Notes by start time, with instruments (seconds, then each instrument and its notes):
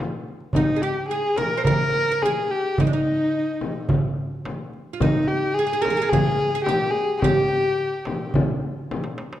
0.28 darbuka ka
0.40 darbuka ka
0.53 kamancheh D#4, oud D#4, darbuka dum, frame drum
0.76 oud G#4
0.81 kamancheh G4, oud G4, darbuka ka
1.07 kamancheh G#4, oud G#4, darbuka ka
1.36 oud A#4, kamancheh A#4, darbuka tek, frame drum
1.57 oud C5
1.65 kamancheh A#4, oud A#4, darbuka dum, frame drum
2.12 oud A#4
2.22 kamancheh G#4, oud G#4, darbuka tek, frame drum
2.50 kamancheh G4, darbuka ka
2.65 darbuka ka
2.78 oud D#4, kamancheh D#4, darbuka dum, frame drum
2.87 oud D4
2.93 oud D#4
3.07 darbuka ka
3.34 darbuka ka
3.61 frame drum
3.89 darbuka dum, frame drum
4.45 darbuka tek, frame drum
4.73 darbuka ka
4.93 oud F4
5.01 kamancheh D#4, oud D#4, frame drum, darbuka dum
5.27 kamancheh G4, darbuka ka
5.54 kamancheh G#4, darbuka ka
5.59 oud G#4
5.67 oud G#4
5.73 oud G#4
5.81 oud G#4, kamancheh A#4, darbuka tek
5.86 frame drum
5.90 oud G#4
5.97 oud G#4
6.02 oud G#4
6.09 kamancheh G#4, oud G#4, darbuka dum, frame drum
6.55 oud G#4
6.63 kamancheh G4, darbuka tek, frame drum
6.69 oud G4
6.90 kamancheh G#4
6.95 darbuka ka
7.09 darbuka ka
7.17 kamancheh G4 G#4
7.22 oud G4, frame drum, darbuka dum
7.50 darbuka ka
7.64 darbuka ka
7.78 darbuka ka
8.05 darbuka tek, frame drum
8.34 darbuka dum, frame drum
8.62 darbuka ka
8.91 darbuka tek, frame drum
9.04 darbuka ka
9.18 darbuka tek
9.33 darbuka ka